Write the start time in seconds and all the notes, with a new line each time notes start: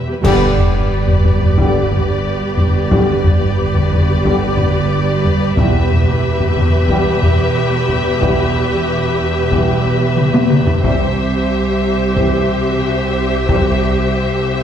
0.08 E2 G4 B4
0.23 G1 G2 D3 G3 B3 G4 D5, concert bass drum, taiko, crash
0.28 B4
0.58 taiko low
0.75 taiko low
1.08 taiko low
1.25 taiko low
1.41 taiko low
1.57 D3 G3 B3 G4, taiko
1.92 taiko low
2.58 taiko low
2.90 D3 G3 B3 G4, taiko
3.24 taiko low
3.41 taiko low
3.75 taiko low
3.92 taiko low
4.09 taiko low
4.23 D3 G3 B3 G4, taiko
4.58 taiko low
5.25 taiko low
5.57 E1 E2 E3 G3 B3 G4 B4 E5, taiko
5.91 taiko low
6.08 taiko low
6.40 taiko low
6.57 taiko low
6.73 taiko low
6.89 E3 G3 B3 G4, taiko
7.22 taiko low
7.89 taiko low
8.19 E3 G3 B3 G4, taiko
9.50 E3 B3 G4, taiko
9.54 G3
10.18 taiko mid
10.34 taiko high
10.51 taiko mid
10.67 taiko low
10.83 C2 E3 G3 C4 G4 C5 E5, taiko
12.17 E3 G3 C4 G4, taiko
13.49 E3 G3 C4 G4, taiko